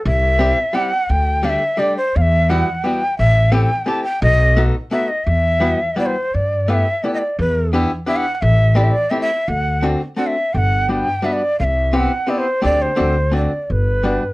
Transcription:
0.05 upright bass C2, shakuhachi E5
0.39 hollow-body jazz guitar G3 C4 E4 G4
0.73 hollow-body jazz guitar G3 C4 E4 G4, shakuhachi F#5
1.09 upright bass D2, shakuhachi G5
1.43 hollow-body jazz guitar G3 A3 D4 G4, shakuhachi F5
1.49 shakuhachi E5
1.77 hollow-body jazz guitar G3 A3 D4 G4, shakuhachi D5
1.97 shakuhachi C5
2.15 upright bass E2, shakuhachi F5
2.21 shakuhachi E5
2.49 hollow-body jazz guitar G3 B3 E4 F#4, shakuhachi F#5
2.84 hollow-body jazz guitar G3 B3 E4 F#4, shakuhachi G5
3.18 upright bass A1, shakuhachi E5
3.52 hollow-body jazz guitar A3 C4 E4 G4, shakuhachi G5
3.86 hollow-body jazz guitar A3 C4 E4 G4, shakuhachi A5
4.04 shakuhachi G5
4.22 upright bass B1, shakuhachi D#5
4.57 hollow-body jazz guitar A3 B3 D#4 F#4
4.91 hollow-body jazz guitar A3 B3 D#4 F#4, shakuhachi E5
5.08 shakuhachi D#5
5.25 upright bass E2, shakuhachi E5
5.60 hollow-body jazz guitar G3 B3 E4 F#4
5.96 hollow-body jazz guitar G3 B3 E4 F#4, shakuhachi D5
6.06 shakuhachi C5
6.34 upright bass G2, shakuhachi D5
6.68 hollow-body jazz guitar A3 B3 E4 G4, shakuhachi F5
6.73 shakuhachi E5
7.03 hollow-body jazz guitar A3 B3 E4 G4, shakuhachi D5
7.14 shakuhachi D#5
7.18 shakuhachi D5
7.38 upright bass E2, shakuhachi B4
7.73 hollow-body jazz guitar B3 D4 E4 G4
8.07 hollow-body jazz guitar B3 D4 E4 G4, shakuhachi E5
8.16 shakuhachi F#5
8.35 shakuhachi F#5
8.42 upright bass A1, shakuhachi E5
8.75 hollow-body jazz guitar A3 C4 E4 G4, shakuhachi D5
8.84 shakuhachi E5
8.91 shakuhachi D5
9.10 hollow-body jazz guitar A3 C4 E4 G4, shakuhachi E5
9.21 shakuhachi E5
9.48 upright bass D2, shakuhachi F#5
9.82 hollow-body jazz guitar A3 C4 D4 F#4
10.16 hollow-body jazz guitar A3 C4 D4 F#4, shakuhachi F#5
10.27 shakuhachi E5
10.54 upright bass G1, shakuhachi G5
10.58 shakuhachi F#5
10.89 hollow-body jazz guitar G3 B3 D4 F#4, shakuhachi G5
11.22 hollow-body jazz guitar G3 B3 D4 F#4, shakuhachi E5
11.33 shakuhachi D5
11.60 upright bass C2, shakuhachi F5
11.64 shakuhachi E5
11.93 hollow-body jazz guitar B3 C4 E4 G4, shakuhachi F#5
12.27 hollow-body jazz guitar B3 C4 E4 G4, shakuhachi D5
12.38 shakuhachi C5
12.62 upright bass D2, hollow-body jazz guitar A3 C4 D4 G4, shakuhachi D5
12.82 shakuhachi C5
12.96 upright bass D2, hollow-body jazz guitar A3 C4 D4 F#4
13.32 hollow-body jazz guitar A3 C4 D4 F#4
13.36 shakuhachi D5
13.70 upright bass G1, shakuhachi B4
14.03 hollow-body jazz guitar G3 B3 D4 F#4

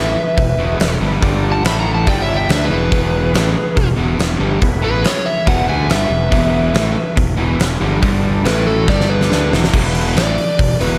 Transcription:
Already playing: fingered electric bass A1, overdriven electric guitar A2 E3 A3, lead electric guitar B4, electric slide guitar E5
0.16 muted overdriven electric guitar stroke, muted fingered electric bass stroke
0.37 fingered electric bass E1, overdriven electric guitar E2 B2, kick, open hi-hat
0.58 fingered electric bass E1, overdriven electric guitar E2 B2 E3, tonewheel organ B3 E4 G#4 B4
0.79 fingered electric bass E1, overdriven electric guitar E2 B2, snare, open hi-hat
1.00 fingered electric bass G1, overdriven electric guitar G2 D3 G3, tonewheel organ B3 E4 G#4 B4
1.22 fingered electric bass G1, overdriven electric guitar G2 D3 G3, tonewheel organ G3 D4 G4 D5, kick, open hi-hat
1.52 lead electric guitar F#5, electric slide guitar A5
1.64 fingered electric bass A1, overdriven electric guitar A2 E3 A3, tonewheel organ A3 E4 A4 E5, lead electric guitar E5, electric slide guitar B5, snare, open hi-hat
1.80 lead electric guitar F#5, electric slide guitar A#5
1.93 lead electric guitar F#5, electric slide guitar A5
2.06 fingered electric bass G1, overdriven electric guitar G2 D3 G3, tonewheel organ G3 D4 G4 D5, lead electric guitar D5, electric slide guitar G5, kick, open hi-hat
2.22 lead electric guitar C#5, electric slide guitar E5
2.28 tonewheel organ G3 D4 G4 D5
2.36 lead electric guitar E5, electric slide guitar G5
2.49 fingered electric bass D2, overdriven electric guitar D3 A3 D4, tonewheel organ B3 E4 G#4 B4, lead electric guitar B4, electric slide guitar E5, snare, open hi-hat
2.65 lead electric guitar G#4, electric slide guitar B4
2.70 fingered electric bass E1, overdriven electric guitar E2 B2 E3, tonewheel organ B3 E4 G#4 C#5
2.92 fingered electric bass E1, overdriven electric guitar E2 B2 E3, tonewheel organ B3 E4 G#4 B4, kick, open hi-hat
3.34 fingered electric bass A1, overdriven electric guitar A2 E3 A3, snare, open hi-hat
3.55 muted overdriven electric guitar stroke, muted fingered electric bass stroke
3.77 fingered electric bass E1, overdriven electric guitar E2 B2, kick, open hi-hat
3.97 fingered electric bass E1, overdriven electric guitar E2 B2 E3, tonewheel organ B3 E4 G#4 B4
4.19 fingered electric bass E1, overdriven electric guitar E2 B2, snare, open hi-hat
4.40 fingered electric bass G1, overdriven electric guitar G2 D3 G3, tonewheel organ B3 E4 G#4 B4
4.61 fingered electric bass E1, overdriven electric guitar E2 B2, tonewheel organ B3 E4 G#4 B4, kick, open hi-hat
4.82 fingered electric bass A1, overdriven electric guitar A2 E3 A3, lead electric guitar G#4, electric slide guitar B4
5.04 lead electric guitar G#4, electric slide guitar C#5, muted overdriven electric guitar stroke, muted fingered electric bass stroke, snare, open hi-hat
5.26 lead electric guitar C#5, electric slide guitar E5
5.46 fingered electric bass E1, overdriven electric guitar E2 B2 E3, lead electric guitar B4, electric slide guitar F#5, kick, open hi-hat
5.67 fingered electric bass D2, overdriven electric guitar D3 A3 D4, tonewheel organ B3 E4 G#4 B4, lead electric guitar E5, electric slide guitar G#5
5.88 fingered electric bass G1, overdriven electric guitar G2 D3 G3, lead electric guitar B4, electric slide guitar E5, snare, open hi-hat
6.09 fingered electric bass E1, overdriven electric guitar E2 B2, tonewheel organ B3 E4 G#4 B4
6.30 fingered electric bass E1, overdriven electric guitar E2 B2 E3, tonewheel organ B3 E4 G#4 B4, kick, open hi-hat
6.73 fingered electric bass A1, overdriven electric guitar A2 E3 A3, snare, open hi-hat
6.95 muted overdriven electric guitar stroke, muted fingered electric bass stroke
7.16 fingered electric bass E1, overdriven electric guitar E2 B2, kick, open hi-hat
7.36 fingered electric bass E1, overdriven electric guitar E2 B2 E3, tonewheel organ B3 E4 G#4 B4
7.59 fingered electric bass E1, overdriven electric guitar E2 B2, snare, open hi-hat
7.80 fingered electric bass G1, overdriven electric guitar G2 D3 G3, tonewheel organ B3 E4 G#4 D5
8.01 fingered electric bass G1, overdriven electric guitar G2 D3 G3, tonewheel organ G3 D4 G4 D5, kick, open hi-hat
8.44 fingered electric bass A1, overdriven electric guitar A2 E3 A3, tonewheel organ A3 E4 A4 E5, lead electric guitar E4, electric slide guitar B4, snare, open hi-hat
8.67 lead electric guitar F#4, electric slide guitar A4
8.87 fingered electric bass G1, overdriven electric guitar G2 D3 G3, tonewheel organ G3 D4 G4 D5, lead electric guitar G4, electric slide guitar D5, kick, snare
9.00 snare
9.10 tonewheel organ G3 D4 G4 D5, lead electric guitar G#4, electric slide guitar B4
9.21 snare
9.30 fingered electric bass D2, overdriven electric guitar D3 A3 D4, tonewheel organ B3 E4 G#4 B4, snare
9.51 fingered electric bass E1, overdriven electric guitar E2 B2 E3, tonewheel organ B3 E4 G#4 B4, snare
9.64 snare
9.73 fingered electric bass E1, overdriven electric guitar E2 B2 E3, tonewheel organ B3 E4 G#4 B4, kick, crash
9.95 open hi-hat
10.16 fingered electric bass A1, overdriven electric guitar A2 E3 A3, electric slide guitar D5, snare, open hi-hat
10.38 muted overdriven electric guitar stroke, muted fingered electric bass stroke, open hi-hat
10.59 fingered electric bass E1, overdriven electric guitar E2 B2, kick, open hi-hat
10.80 fingered electric bass E1, overdriven electric guitar E2 B2 E3, tonewheel organ B3 E4 G#4 B4, electric slide guitar B4, open hi-hat

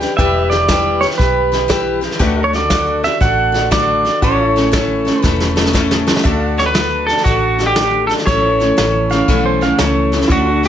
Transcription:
Already playing: pedal steel guitar G4 B4 D5 G5
0.01 steel-string acoustic guitar D4 G4 B4, snare
0.17 fingered electric bass E1, steel-string acoustic guitar E3 G3 E4 G4 B4, pedal steel guitar G4 B4 D5 E5, kick, snare
0.45 pedal steel guitar E5
0.50 steel-string acoustic guitar G4 B4, pedal steel guitar D5, snare
0.54 steel-string acoustic guitar E4
0.68 steel-string acoustic guitar E3 G3 E4 G4 B4, kick, snare, hi-hat pedal
1.01 steel-string acoustic guitar E4 G4 B4, pedal steel guitar C#5, snare
1.10 snare
1.18 fingered electric bass B1, steel-string acoustic guitar G3 E4 G4 B4, pedal steel guitar B4, kick, snare
1.52 steel-string acoustic guitar E4 G4 B4, snare
1.68 steel-string acoustic guitar E3 G3 E4 G4 B4, kick, snare, hi-hat pedal
2.01 steel-string acoustic guitar E4 G4 B4, snare
2.11 snare
2.19 fingered electric bass D2, steel-string acoustic guitar D3 A3 D4 F#4 A4, pedal steel guitar G4 B4 E5, kick, snare
2.40 pedal steel guitar F#4
2.44 pedal steel guitar A4 C#5 D5
2.53 steel-string acoustic guitar D4 F#4 A4, pedal steel guitar D5, snare
2.70 steel-string acoustic guitar D3 A3 D4 F#4 A4, kick, snare, hi-hat pedal
3.03 steel-string acoustic guitar D4 F#4 A4, pedal steel guitar E5, snare
3.20 fingered electric bass A1, steel-string acoustic guitar A3 D4 F#4 A4, pedal steel guitar F#5, kick, snare
3.52 steel-string acoustic guitar D4 F#4 A4, snare
3.71 steel-string acoustic guitar D3 A3 D4 F#4 A4, pedal steel guitar D5, kick, snare, hi-hat pedal
4.05 steel-string acoustic guitar D4 F#4 A4, snare
4.22 fingered electric bass A1, steel-string acoustic guitar A2 E3 A3 C#4 E4 A4, pedal steel guitar F#4 A4 C#5 D5, kick, snare
4.44 pedal steel guitar E4 C#5
4.56 steel-string acoustic guitar A3 C#4 E4 A4, snare
4.72 steel-string acoustic guitar A2 E3 A3 C#4 E4 A4, kick, snare, hi-hat pedal
5.05 steel-string acoustic guitar A3 C#4 E4 A4, snare
5.22 fingered electric bass E1, steel-string acoustic guitar A3 C#4 E4 A4, pedal steel guitar B4, kick, snare
5.40 snare
5.56 steel-string acoustic guitar A3 C#4 E4 A4, snare
5.66 snare
5.73 steel-string acoustic guitar A2 E3 A3 C#4 E4 A4, kick, snare, hi-hat pedal
5.91 snare
6.07 steel-string acoustic guitar A3 C#4 E4 A4, snare
6.16 snare
6.23 fingered electric bass D2, steel-string acoustic guitar D3 A3 D4 F#4 A4, pedal steel guitar A4 D5 E5, kick, snare
6.49 pedal steel guitar F#5
6.57 steel-string acoustic guitar D4 F#4 A4, clean electric guitar C#5, snare
6.66 clean electric guitar B4
6.74 steel-string acoustic guitar A3 D4 F#4 A4, snare, hi-hat pedal
7.08 steel-string acoustic guitar D4 F#4 A4, snare
7.17 snare
7.25 fingered electric bass A1, steel-string acoustic guitar D3 A3 D4 F#4 A4, kick, snare
7.58 steel-string acoustic guitar D4 F#4 A4, snare
7.67 clean electric guitar G4
7.75 steel-string acoustic guitar A3 D4 F#4 A4, snare, hi-hat pedal
8.09 steel-string acoustic guitar D4 F#4 A4, snare
8.18 snare
8.26 fingered electric bass A1, steel-string acoustic guitar A2 E3 A3 C#4 E4 A4, pedal steel guitar F#3 A4 C#5, clean electric guitar C#5, kick, snare
8.51 pedal steel guitar E3
8.60 steel-string acoustic guitar A3 C#4 E4 A4, snare
8.77 fingered electric bass A1, steel-string acoustic guitar A3 C#4 E4 A4, snare, hi-hat pedal
9.10 steel-string acoustic guitar A3 C#4 E4 A4, pedal steel guitar F5, snare
9.28 fingered electric bass B1, steel-string acoustic guitar A2 E3 A3 C#4 E4 A4, kick, snare
9.46 pedal steel guitar C5
9.61 steel-string acoustic guitar A3 C#4 E4 A4, pedal steel guitar F5, snare
9.78 fingered electric bass C#2, steel-string acoustic guitar A3 C#4 E4 A4, pedal steel guitar C#5, snare, hi-hat pedal
10.12 steel-string acoustic guitar A3 C#4 E4 A4, snare
10.21 snare
10.28 fingered electric bass D2, steel-string acoustic guitar D3 A3 D4 F#4, pedal steel guitar C#4 E4 A4, kick, snare
10.32 steel-string acoustic guitar A4
10.51 pedal steel guitar D4 F#4
10.63 steel-string acoustic guitar A4, snare

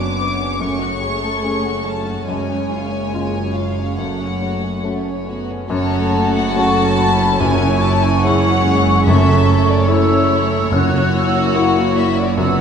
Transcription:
Already playing: double bass section F#1, grand piano F#2 B3 C#4 F#4, cello section F#2, viola section B3 D4, violin section C#4 C#5 D6
0.18 violin section B3
0.40 violin section C#4
0.61 grand piano F#2, viola section A3 C#4, violin section C#4 C#6
0.81 violin section F#4
1.01 violin section G#4
1.22 violin section A4
1.44 grand piano G#3 A3 C#4, violin section G#4
1.65 violin section F#4
1.84 violin section C#4 A5
2.06 violin section F#4
2.27 double bass section F#1, cello section F#2, grand piano F#2, violin section G#3 C#5 G#5, viola section G#3
2.48 violin section C#4
2.70 violin section F4
2.92 violin section C#4
3.12 violin section G#3, grand piano G#3 C#4 F4
3.35 violin section C#4
3.55 violin section F4 F5
3.77 violin section C#4
3.98 grand piano F#2, viola section A3, violin section A3 F#5
4.21 violin section C#4
4.43 violin section F#4
4.64 violin section C#4
4.83 grand piano A3 C#4 F#4, violin section A3, viola section A3
5.06 violin section C#4
5.28 viola section B3, violin section F#4
5.49 violin section C#4
5.70 double bass section F#1, grand piano F#2, cello section F#2, french horn section F#3 C#4, viola section A3 C#4, violin section F#4 A4 C#5, flute section A5
6.34 violin section F#5
6.54 grand piano A3 C#4 F#4, viola section C#4, violin section A4 A5, flute section C#6
6.99 viola section E4, flute section B5
7.39 grand piano F#2, timpani F#2, violin section E4 C#5 G#5, flute section C#6
7.81 violin section A5
8.02 violin section G#5
8.23 grand piano G#3 C#4 E4, viola section C#4 E4, violin section G#4 C#5 F#5
8.65 viola section G#3
9.05 timpani F#2, grand piano F#2, viola section A3 C#4, french horn section A3, violin section A4 C#5 E5
9.68 violin section D5
9.88 grand piano A3 C#4 E4, viola section A3, violin section E4 C#5, flute section E6
10.71 double bass section F#1, timpani F#2, cello section F#2, grand piano F#2, french horn section A#3 E4, viola section A#3 C#4, violin section F#4 C#5, flute section F#6
11.14 viola section A#3, flute section E6
11.55 grand piano A#3 E4 F#4, viola section E4, flute section C#6
11.95 violin section E5
12.17 violin section D5
12.37 grand piano F#2, timpani F#2, french horn section D3 B3, viola section B3 D4, violin section F#4 C#5, flute section E6

